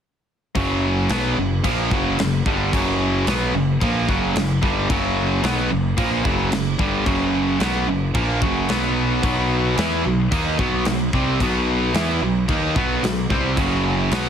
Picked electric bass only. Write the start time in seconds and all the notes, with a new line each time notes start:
0.56 F#1
1.10 B1
1.37 F#1
1.65 A#1
1.91 F#1
2.19 F#1
2.46 G1
2.73 F#1
3.27 B1
3.54 F#1
3.81 A#1
4.09 F#1
4.35 F#1
4.63 G1
4.90 F#1
5.43 B1
5.71 F#1
5.98 A#1
6.25 F#1
6.53 F#1
6.79 G1
7.06 F#1
7.61 B1
7.88 F#1
8.15 A#1
8.42 F#1
8.69 B1
9.24 B1
9.78 E2
10.06 B1
10.32 D#2
10.59 B1
10.87 B1
11.13 C2
11.40 B1
11.94 E2
12.22 B1
12.49 D#2
12.76 B1
13.03 B1
13.30 C2
13.57 F#1
14.11 B1